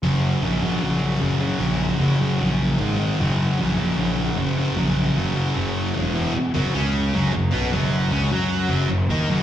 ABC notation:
X:1
M:4/4
L:1/8
Q:1/4=152
K:F#mix
V:1 name="Distorted electric guitar" clef=bass
[F,,C,F,]2 [F,,C,F,] [F,,C,F,] [F,,C,F,]2 [F,,C,F,] [F,,C,F,] | [F,,C,F,]2 [F,,C,F,] [F,,C,F,] [F,,C,F,]2 [G,,D,G,] [G,,D,G,] | [F,,C,F,]2 [F,,C,F,] [F,,C,F,] [F,,C,F,]2 [F,,C,F,] [F,,C,F,] | [F,,C,F,]2 [F,,C,F,] [F,,C,F,] [F,,C,F,]2 [E,,B,,E,] [E,,B,,E,] |
z [F,,F,] [C,C]2 [F,,F,] F,, [B,,B,] [F,,F,]- | [F,,F,] [C,C] [F,F]2 [F,,F,] F,, [D,D] [F,,F,] |]
V:2 name="Picked electric bass" clef=bass
F,,,2 A,,, A,,, A,,,2 F,,,2 | A,,,2 F,,,2 A,,,2 G,,,2 | F,,,2 A,,, A,,, A,,,2 F,,,2 | A,,,2 F,,,2 F,,,2 E,,,2 |
z F,,, C,,2 F,,, F,,, B,,, F,,,- | F,,, C,, F,,2 F,,, F,,, D,, F,,, |]